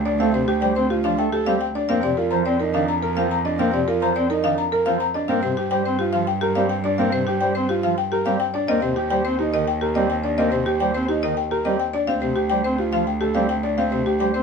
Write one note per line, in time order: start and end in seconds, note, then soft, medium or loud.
0.00 1.74 D2 medium
0.06 0.24 D4 medium
0.06 0.24 D5 medium
0.20 0.30 A3 medium
0.20 0.38 C4 medium
0.20 0.38 F5 medium
0.34 0.44 C3 medium
0.34 0.52 C5 medium
0.48 0.66 G4 medium
0.62 0.73 G3 medium
0.62 0.80 C5 medium
0.62 0.80 G5 medium
0.76 0.87 C4 medium
0.76 0.95 C5 medium
0.90 1.09 F4 medium
0.90 1.09 G4 medium
1.04 1.15 F3 medium
1.04 1.23 D4 medium
1.04 1.23 F5 medium
1.19 1.29 A3 medium
1.19 1.37 G5 medium
1.32 1.51 G4 medium
1.32 1.51 A4 medium
1.47 1.57 G3 medium
1.47 1.65 C4 medium
1.47 1.65 F5 medium
1.61 1.79 G5 medium
1.75 1.94 D4 medium
1.75 1.94 D5 medium
1.89 5.13 F2 medium
1.89 2.00 A#3 medium
1.89 2.08 C4 medium
1.89 2.07 F5 medium
2.03 2.14 C3 medium
2.03 2.22 D5 medium
2.17 2.36 F4 medium
2.17 2.36 A#4 medium
2.31 2.42 F3 medium
2.31 2.50 C5 medium
2.31 2.50 A#5 medium
2.46 2.56 C4 medium
2.46 2.64 D5 medium
2.60 2.79 D#4 medium
2.60 2.78 A#4 medium
2.74 2.85 D#3 medium
2.74 2.93 D4 medium
2.74 2.92 F5 medium
2.88 3.07 A#5 medium
3.03 3.21 A#4 medium
3.17 3.27 F3 medium
3.17 3.35 C4 medium
3.17 3.35 F5 medium
3.31 3.49 A#5 medium
3.45 3.63 D4 medium
3.45 3.63 D#5 medium
3.59 3.70 A#3 loud
3.59 3.78 C4 medium
3.59 3.78 F5 medium
3.73 3.84 C3 medium
3.73 3.92 D5 medium
3.87 4.06 F4 medium
3.87 4.06 A#4 medium
4.02 4.12 F3 medium
4.02 4.20 C5 medium
4.02 4.20 A#5 medium
4.16 4.26 C4 medium
4.16 4.34 D5 medium
4.30 4.48 D#4 medium
4.30 4.48 A#4 medium
4.44 4.55 D#3 medium
4.44 4.62 D4 medium
4.44 4.62 F5 loud
4.58 4.76 A#5 medium
4.72 4.91 A#4 medium
4.86 4.97 F3 medium
4.86 5.05 C4 medium
4.86 5.05 F5 medium
5.00 5.19 A#5 medium
5.14 5.33 D4 medium
5.14 5.33 D#5 medium
5.28 8.53 G2 medium
5.28 5.40 A#3 medium
5.28 5.47 C4 medium
5.28 5.47 F5 medium
5.43 5.54 C3 medium
5.43 5.61 C5 medium
5.57 5.76 G4 medium
5.71 5.82 G3 medium
5.71 5.90 C5 medium
5.71 5.90 G5 medium
5.85 5.96 C4 medium
5.85 6.04 C5 medium
5.99 6.18 F4 medium
5.99 6.18 G4 medium
6.13 6.25 F3 medium
6.13 6.32 F5 loud
6.27 6.46 G5 medium
6.41 6.60 G4 medium
6.41 6.61 A#4 medium
6.55 6.67 G3 loud
6.55 6.75 C4 medium
6.55 6.74 F5 medium
6.69 6.88 G5 medium
6.84 7.03 D4 medium
6.84 7.03 D5 medium
6.98 7.10 A#3 medium
6.98 7.17 C4 medium
6.98 7.17 F5 medium
7.12 7.24 C3 medium
7.12 7.31 C5 medium
7.27 7.45 G4 medium
7.27 7.46 G4 medium
7.41 7.52 G3 loud
7.41 7.60 C5 medium
7.41 7.59 G5 medium
7.55 7.66 C4 medium
7.55 7.74 C5 medium
7.69 7.88 F4 medium
7.69 7.88 G4 medium
7.83 7.94 F3 medium
7.83 8.02 F5 medium
7.98 8.16 G5 medium
8.12 8.30 G4 medium
8.12 8.30 A#4 medium
8.26 8.37 G3 loud
8.26 8.45 C4 medium
8.26 8.44 F5 medium
8.40 8.58 G5 medium
8.54 8.73 D4 medium
8.54 8.73 D5 medium
8.68 11.93 D#2 medium
8.68 8.79 A#3 loud
8.68 8.87 C4 medium
8.68 8.87 D#5 medium
8.82 8.93 C3 medium
8.82 9.01 C5 medium
8.96 9.15 G4 medium
9.10 9.22 G3 medium
9.10 9.29 C5 medium
9.10 9.29 G5 medium
9.25 9.36 C4 medium
9.25 9.43 C5 medium
9.39 9.58 D#4 medium
9.39 9.57 G4 medium
9.54 9.64 D#3 medium
9.54 9.72 D#5 medium
9.68 9.86 G5 medium
9.81 10.00 G4 medium
9.81 10.00 A#4 medium
9.95 10.07 G3 medium
9.95 10.14 C4 medium
9.95 10.14 D#5 medium
10.10 10.28 G5 medium
10.24 10.43 D4 medium
10.24 10.42 D5 medium
10.38 10.49 A#3 medium
10.38 10.57 C4 medium
10.38 10.57 D#5 medium
10.52 10.63 C3 medium
10.52 10.71 C5 medium
10.66 10.85 G4 medium
10.80 10.91 G3 medium
10.80 10.99 C5 medium
10.80 10.99 G5 medium
10.95 11.06 C4 medium
10.95 11.13 C5 medium
11.09 11.27 D#4 medium
11.09 11.27 G4 medium
11.23 11.34 D#3 medium
11.23 11.42 D#5 medium
11.37 11.56 G5 medium
11.51 11.70 G4 medium
11.51 11.70 A#4 medium
11.65 11.76 G3 medium
11.65 11.84 C4 medium
11.65 11.84 D#5 medium
11.80 11.98 G5 medium
11.94 12.12 D4 medium
11.94 12.12 D5 medium
12.07 14.43 D2 medium
12.07 12.27 C4 medium
12.07 12.26 F5 medium
12.22 12.33 C3 medium
12.22 12.41 C5 medium
12.36 12.55 G4 medium
12.50 12.61 G3 medium
12.50 12.69 C5 medium
12.50 12.69 G5 medium
12.64 12.76 C4 medium
12.64 12.83 C5 medium
12.79 12.97 F4 medium
12.79 12.97 G4 medium
12.93 13.04 F3 medium
12.93 13.11 F5 medium
13.07 13.26 G5 medium
13.21 13.40 G4 medium
13.21 13.40 A4 medium
13.35 13.46 G3 loud
13.35 13.54 C4 medium
13.35 13.54 F5 medium
13.49 13.68 G5 medium
13.63 13.82 D4 medium
13.63 13.82 D5 medium
13.78 13.96 C4 medium
13.78 13.96 F5 medium
13.92 14.03 C3 medium
13.92 14.10 C5 medium
14.06 14.25 G4 medium
14.20 14.31 G3 medium
14.20 14.39 C5 medium
14.20 14.39 G5 medium
14.34 14.43 C4 medium
14.34 14.43 C5 medium